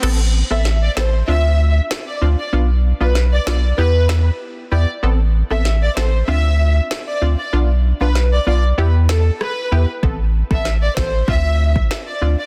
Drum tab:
CC |x---------------|----------------|----------------|----------------|
SD |----o-o-----o---|----o-o---o-----|----o-o-----o---|----o-----o-r---|
BD |----------------|----------------|----------------|----------------|

CC |----------------|
SD |----o-o-----o---|
BD |o--o--o-o--o----|